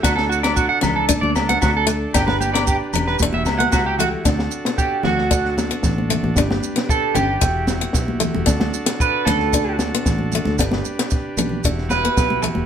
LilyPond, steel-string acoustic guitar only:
\new Staff \with { instrumentName = "Steel-string acoustic guitar" } { \time 4/4 \key d \major \tempo 4 = 114 d'8 r16 b8 r16 cis'8 d'8 r16 b8 r16 a8 | d'8 r16 b8 r16 cis'8 d'8 r16 b8 r16 a8 | d'8 r16 b8 r8. d'8 r16 b8 r16 a8 | d'8 r16 b8 r16 cis'8 r8. b8 r16 a8 |
d'8 r4 cis'8 d'8 r16 b8 r16 a8 | d'8 r4 cis'8 d'8 r16 b8 r16 a8 | }